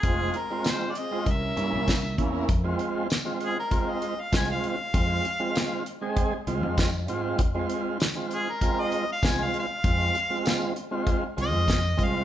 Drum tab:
HH |xxxxxxxx|xxxxxxxx|xxxxxxxx|xxxxxxxx|
TB |--x---x-|--x---x-|--x---x-|--x---x-|
SD |--o---o-|--o---o-|--o---o-|--o---o-|
BD |o---o-oo|o---o-o-|o---o-o-|o---o-o-|

HH |xxxxxxxx|
TB |--x---x-|
SD |--o---o-|
BD |o---o-oo|